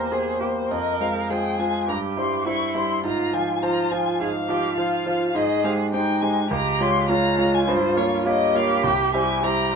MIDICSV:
0, 0, Header, 1, 4, 480
1, 0, Start_track
1, 0, Key_signature, -4, "minor"
1, 0, Tempo, 590551
1, 574, Time_signature, 4, 2, 24, 8
1, 1536, Tempo, 577478
1, 5376, Tempo, 586510
1, 8032, End_track
2, 0, Start_track
2, 0, Title_t, "Violin"
2, 0, Program_c, 0, 40
2, 0, Note_on_c, 0, 72, 86
2, 577, Note_on_c, 0, 75, 92
2, 589, Note_off_c, 0, 72, 0
2, 825, Note_on_c, 0, 77, 72
2, 837, Note_off_c, 0, 75, 0
2, 1058, Note_on_c, 0, 79, 78
2, 1070, Note_off_c, 0, 77, 0
2, 1296, Note_on_c, 0, 80, 79
2, 1308, Note_off_c, 0, 79, 0
2, 1531, Note_off_c, 0, 80, 0
2, 1536, Note_on_c, 0, 82, 86
2, 1603, Note_off_c, 0, 82, 0
2, 1777, Note_on_c, 0, 84, 83
2, 2013, Note_off_c, 0, 84, 0
2, 2021, Note_on_c, 0, 85, 91
2, 2254, Note_off_c, 0, 85, 0
2, 2260, Note_on_c, 0, 84, 88
2, 2494, Note_off_c, 0, 84, 0
2, 2508, Note_on_c, 0, 82, 98
2, 2740, Note_on_c, 0, 80, 87
2, 2752, Note_off_c, 0, 82, 0
2, 2978, Note_on_c, 0, 82, 92
2, 2991, Note_off_c, 0, 80, 0
2, 3220, Note_on_c, 0, 80, 90
2, 3232, Note_off_c, 0, 82, 0
2, 3460, Note_off_c, 0, 80, 0
2, 3465, Note_on_c, 0, 77, 100
2, 4414, Note_on_c, 0, 75, 108
2, 4427, Note_off_c, 0, 77, 0
2, 4649, Note_off_c, 0, 75, 0
2, 4654, Note_on_c, 0, 77, 91
2, 4721, Note_off_c, 0, 77, 0
2, 4892, Note_on_c, 0, 79, 98
2, 5129, Note_on_c, 0, 80, 96
2, 5142, Note_off_c, 0, 79, 0
2, 5369, Note_off_c, 0, 80, 0
2, 5374, Note_on_c, 0, 82, 106
2, 5625, Note_on_c, 0, 84, 109
2, 5637, Note_off_c, 0, 82, 0
2, 5848, Note_off_c, 0, 84, 0
2, 5853, Note_on_c, 0, 82, 113
2, 6225, Note_on_c, 0, 80, 101
2, 6237, Note_off_c, 0, 82, 0
2, 6332, Note_on_c, 0, 72, 112
2, 6344, Note_off_c, 0, 80, 0
2, 6573, Note_on_c, 0, 73, 89
2, 6586, Note_off_c, 0, 72, 0
2, 6812, Note_off_c, 0, 73, 0
2, 6821, Note_on_c, 0, 75, 99
2, 7053, Note_on_c, 0, 77, 98
2, 7065, Note_off_c, 0, 75, 0
2, 7285, Note_off_c, 0, 77, 0
2, 7290, Note_on_c, 0, 79, 102
2, 7525, Note_off_c, 0, 79, 0
2, 7532, Note_on_c, 0, 80, 100
2, 7769, Note_on_c, 0, 82, 113
2, 7781, Note_off_c, 0, 80, 0
2, 8032, Note_off_c, 0, 82, 0
2, 8032, End_track
3, 0, Start_track
3, 0, Title_t, "Cello"
3, 0, Program_c, 1, 42
3, 0, Note_on_c, 1, 70, 63
3, 95, Note_on_c, 1, 68, 62
3, 107, Note_off_c, 1, 70, 0
3, 322, Note_off_c, 1, 68, 0
3, 327, Note_on_c, 1, 67, 57
3, 392, Note_off_c, 1, 67, 0
3, 570, Note_on_c, 1, 70, 65
3, 1057, Note_on_c, 1, 68, 58
3, 1069, Note_off_c, 1, 70, 0
3, 1530, Note_off_c, 1, 68, 0
3, 1535, Note_on_c, 1, 67, 70
3, 2015, Note_on_c, 1, 64, 69
3, 2028, Note_off_c, 1, 67, 0
3, 2496, Note_off_c, 1, 64, 0
3, 2500, Note_on_c, 1, 65, 64
3, 2968, Note_off_c, 1, 65, 0
3, 2976, Note_on_c, 1, 65, 70
3, 3449, Note_off_c, 1, 65, 0
3, 3465, Note_on_c, 1, 68, 80
3, 3531, Note_off_c, 1, 68, 0
3, 3694, Note_on_c, 1, 67, 76
3, 3928, Note_off_c, 1, 67, 0
3, 3933, Note_on_c, 1, 65, 74
3, 4403, Note_off_c, 1, 65, 0
3, 4419, Note_on_c, 1, 68, 77
3, 4888, Note_off_c, 1, 68, 0
3, 4899, Note_on_c, 1, 63, 74
3, 5368, Note_off_c, 1, 63, 0
3, 5375, Note_on_c, 1, 67, 89
3, 5855, Note_on_c, 1, 65, 74
3, 5867, Note_off_c, 1, 67, 0
3, 6811, Note_on_c, 1, 67, 88
3, 6823, Note_off_c, 1, 65, 0
3, 7772, Note_off_c, 1, 67, 0
3, 7776, Note_on_c, 1, 67, 78
3, 8032, Note_off_c, 1, 67, 0
3, 8032, End_track
4, 0, Start_track
4, 0, Title_t, "Grand piano"
4, 0, Program_c, 2, 0
4, 0, Control_c, 2, 64, 127
4, 0, Note_on_c, 2, 40, 51
4, 0, Note_on_c, 2, 58, 43
4, 0, Note_on_c, 2, 67, 45
4, 0, Note_on_c, 2, 72, 45
4, 92, Note_off_c, 2, 58, 0
4, 92, Note_on_c, 2, 58, 41
4, 95, Note_off_c, 2, 67, 0
4, 95, Note_on_c, 2, 67, 41
4, 100, Note_off_c, 2, 72, 0
4, 100, Note_on_c, 2, 72, 44
4, 307, Note_off_c, 2, 58, 0
4, 309, Note_off_c, 2, 67, 0
4, 312, Note_off_c, 2, 72, 0
4, 330, Note_on_c, 2, 58, 42
4, 330, Note_on_c, 2, 67, 46
4, 337, Note_on_c, 2, 72, 47
4, 548, Note_off_c, 2, 58, 0
4, 548, Note_off_c, 2, 67, 0
4, 552, Note_off_c, 2, 72, 0
4, 577, Note_on_c, 2, 41, 63
4, 590, Control_c, 2, 64, 0
4, 591, Note_off_c, 2, 40, 0
4, 718, Control_c, 2, 64, 127
4, 811, Note_off_c, 2, 41, 0
4, 816, Note_on_c, 2, 56, 46
4, 817, Note_on_c, 2, 65, 45
4, 821, Note_on_c, 2, 72, 51
4, 1033, Note_off_c, 2, 56, 0
4, 1034, Note_off_c, 2, 65, 0
4, 1036, Note_off_c, 2, 72, 0
4, 1058, Note_on_c, 2, 56, 47
4, 1063, Note_on_c, 2, 65, 43
4, 1063, Note_on_c, 2, 72, 49
4, 1274, Note_off_c, 2, 56, 0
4, 1276, Note_off_c, 2, 65, 0
4, 1276, Note_off_c, 2, 72, 0
4, 1294, Note_on_c, 2, 56, 45
4, 1296, Note_on_c, 2, 65, 48
4, 1300, Note_on_c, 2, 72, 52
4, 1510, Note_off_c, 2, 56, 0
4, 1511, Note_off_c, 2, 65, 0
4, 1514, Note_off_c, 2, 72, 0
4, 1531, Note_on_c, 2, 43, 66
4, 1551, Control_c, 2, 64, 0
4, 1690, Control_c, 2, 64, 127
4, 1769, Note_off_c, 2, 43, 0
4, 1769, Note_on_c, 2, 55, 47
4, 1772, Note_on_c, 2, 64, 46
4, 1776, Note_on_c, 2, 72, 52
4, 1989, Note_off_c, 2, 55, 0
4, 1991, Note_off_c, 2, 64, 0
4, 1993, Note_off_c, 2, 72, 0
4, 2011, Note_on_c, 2, 55, 49
4, 2014, Note_on_c, 2, 64, 49
4, 2019, Note_on_c, 2, 72, 50
4, 2230, Note_off_c, 2, 55, 0
4, 2231, Note_off_c, 2, 64, 0
4, 2234, Note_off_c, 2, 72, 0
4, 2249, Note_on_c, 2, 55, 51
4, 2251, Note_on_c, 2, 64, 49
4, 2255, Note_on_c, 2, 72, 51
4, 2469, Note_off_c, 2, 55, 0
4, 2470, Note_off_c, 2, 64, 0
4, 2472, Note_off_c, 2, 72, 0
4, 2491, Note_on_c, 2, 44, 73
4, 2514, Control_c, 2, 64, 0
4, 2652, Control_c, 2, 64, 127
4, 2727, Note_off_c, 2, 44, 0
4, 2737, Note_on_c, 2, 53, 55
4, 2740, Note_on_c, 2, 65, 50
4, 2742, Note_on_c, 2, 72, 57
4, 2952, Note_off_c, 2, 53, 0
4, 2954, Note_off_c, 2, 65, 0
4, 2955, Note_off_c, 2, 72, 0
4, 2974, Note_on_c, 2, 53, 53
4, 2979, Note_on_c, 2, 65, 50
4, 2984, Note_on_c, 2, 72, 57
4, 3192, Note_off_c, 2, 53, 0
4, 3195, Note_off_c, 2, 65, 0
4, 3198, Note_off_c, 2, 72, 0
4, 3217, Note_on_c, 2, 53, 55
4, 3221, Note_on_c, 2, 65, 53
4, 3224, Note_on_c, 2, 72, 55
4, 3434, Note_off_c, 2, 53, 0
4, 3437, Note_off_c, 2, 65, 0
4, 3438, Note_off_c, 2, 72, 0
4, 3458, Note_on_c, 2, 44, 64
4, 3690, Note_off_c, 2, 44, 0
4, 3695, Note_on_c, 2, 53, 54
4, 3700, Note_on_c, 2, 65, 54
4, 3704, Note_on_c, 2, 72, 59
4, 3909, Note_off_c, 2, 53, 0
4, 3912, Note_off_c, 2, 65, 0
4, 3914, Note_off_c, 2, 72, 0
4, 3935, Note_on_c, 2, 53, 52
4, 3936, Note_on_c, 2, 65, 55
4, 3939, Note_on_c, 2, 72, 54
4, 4149, Note_off_c, 2, 53, 0
4, 4149, Note_off_c, 2, 65, 0
4, 4151, Note_off_c, 2, 72, 0
4, 4170, Note_on_c, 2, 53, 56
4, 4173, Note_on_c, 2, 65, 57
4, 4176, Note_on_c, 2, 72, 59
4, 4387, Note_off_c, 2, 53, 0
4, 4389, Note_off_c, 2, 65, 0
4, 4391, Note_off_c, 2, 72, 0
4, 4409, Note_on_c, 2, 44, 81
4, 4428, Control_c, 2, 64, 0
4, 4551, Control_c, 2, 64, 127
4, 4645, Note_off_c, 2, 44, 0
4, 4654, Note_on_c, 2, 56, 58
4, 4657, Note_on_c, 2, 67, 60
4, 4661, Note_on_c, 2, 72, 62
4, 4871, Note_off_c, 2, 56, 0
4, 4872, Note_off_c, 2, 67, 0
4, 4875, Note_off_c, 2, 72, 0
4, 4899, Note_on_c, 2, 56, 58
4, 4902, Note_on_c, 2, 67, 56
4, 4902, Note_on_c, 2, 72, 60
4, 5114, Note_off_c, 2, 56, 0
4, 5115, Note_off_c, 2, 67, 0
4, 5116, Note_off_c, 2, 72, 0
4, 5139, Note_on_c, 2, 56, 57
4, 5141, Note_on_c, 2, 67, 58
4, 5144, Note_on_c, 2, 72, 60
4, 5354, Note_off_c, 2, 56, 0
4, 5355, Note_off_c, 2, 67, 0
4, 5357, Note_off_c, 2, 72, 0
4, 5376, Note_on_c, 2, 37, 85
4, 5391, Control_c, 2, 64, 0
4, 5499, Control_c, 2, 64, 127
4, 5607, Note_off_c, 2, 37, 0
4, 5617, Note_on_c, 2, 56, 56
4, 5619, Note_on_c, 2, 65, 61
4, 5623, Note_on_c, 2, 73, 63
4, 5831, Note_off_c, 2, 56, 0
4, 5832, Note_off_c, 2, 65, 0
4, 5834, Note_off_c, 2, 73, 0
4, 5854, Note_on_c, 2, 56, 57
4, 5858, Note_on_c, 2, 65, 53
4, 5858, Note_on_c, 2, 73, 61
4, 6069, Note_off_c, 2, 56, 0
4, 6071, Note_off_c, 2, 65, 0
4, 6072, Note_off_c, 2, 73, 0
4, 6090, Note_on_c, 2, 56, 59
4, 6093, Note_on_c, 2, 65, 57
4, 6095, Note_on_c, 2, 73, 63
4, 6306, Note_off_c, 2, 56, 0
4, 6308, Note_off_c, 2, 65, 0
4, 6309, Note_off_c, 2, 73, 0
4, 6329, Note_on_c, 2, 43, 81
4, 6348, Control_c, 2, 64, 0
4, 6457, Control_c, 2, 64, 127
4, 6563, Note_off_c, 2, 43, 0
4, 6566, Note_on_c, 2, 58, 58
4, 6571, Note_on_c, 2, 65, 57
4, 6575, Note_on_c, 2, 73, 64
4, 6784, Note_off_c, 2, 58, 0
4, 6787, Note_off_c, 2, 65, 0
4, 6789, Note_off_c, 2, 73, 0
4, 6805, Note_on_c, 2, 58, 62
4, 6807, Note_on_c, 2, 65, 58
4, 6812, Note_on_c, 2, 73, 61
4, 7023, Note_off_c, 2, 58, 0
4, 7024, Note_off_c, 2, 65, 0
4, 7027, Note_off_c, 2, 73, 0
4, 7044, Note_on_c, 2, 58, 59
4, 7048, Note_on_c, 2, 65, 60
4, 7051, Note_on_c, 2, 73, 62
4, 7262, Note_off_c, 2, 58, 0
4, 7264, Note_off_c, 2, 65, 0
4, 7266, Note_off_c, 2, 73, 0
4, 7279, Note_on_c, 2, 36, 83
4, 7304, Control_c, 2, 64, 0
4, 7439, Control_c, 2, 64, 127
4, 7518, Note_off_c, 2, 36, 0
4, 7528, Note_on_c, 2, 55, 53
4, 7529, Note_on_c, 2, 64, 57
4, 7533, Note_on_c, 2, 72, 65
4, 7747, Note_off_c, 2, 55, 0
4, 7748, Note_off_c, 2, 64, 0
4, 7750, Note_off_c, 2, 72, 0
4, 7769, Note_on_c, 2, 55, 50
4, 7770, Note_on_c, 2, 64, 54
4, 7773, Note_on_c, 2, 72, 60
4, 7988, Note_off_c, 2, 55, 0
4, 7989, Note_off_c, 2, 64, 0
4, 7991, Note_off_c, 2, 72, 0
4, 8032, End_track
0, 0, End_of_file